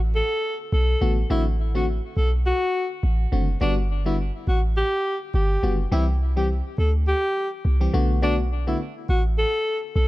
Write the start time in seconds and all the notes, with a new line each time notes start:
Already playing: A1
0.15 A4
0.72 B1 A4
1.01 A1 D3 A3 B3 F#4
1.30 A1 D3 A3 C4 E4 F#4
1.75 D3 A3 C4 F#4
2.17 B1 A4
2.46 F#4
3.03 A1
3.32 F#1 D3 A3 C4 F#4
3.61 G1 D3 G3 B3 D4 F#4
4.06 D3 G3 B3 E4 F#4
4.47 A1 F#4
4.77 G4
5.34 G1 G4
5.63 F#1 D3 G3 B3 F#4
5.92 C2 E3 G3 C4 E4 G4
6.36 E3 G3 C4 G4
6.78 D2 A4
7.08 G4
7.65 C2
7.80 E3 G3 C4 G4
7.93 B1 D3 A3 B3 F#4
8.22 D3 A3 B3 D4 F#4
8.67 D3 A3 B3 E4 F#4
9.09 A1 F#4
9.38 A4
9.96 B1 A4